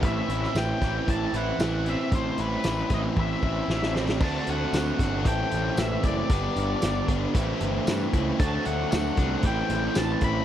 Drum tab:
CC |----------------|----------------|x---------------|----------------|
HH |x-x-x-x-x-x-x-x-|x-x-x-x---------|--x-x-x-x-x-x-x-|x-x-x-x-x-x-x-x-|
TB |----x-------x---|----x-----------|----x-------x---|----x-------x---|
SD |---oo-o-----o---|----o-------oooo|----o-o-----o---|----o-------o---|
T1 |----------------|--------o-------|----------------|----------------|
BD |o-----o-o-------|o-----o-o-o-----|o-----o-o-----o-|o-----o-o-----o-|

CC |----------------|
HH |x-x-x-x-x-x-x-x-|
TB |----x-------x---|
SD |----o-o-----o---|
T1 |----------------|
BD |o-----o-o-----o-|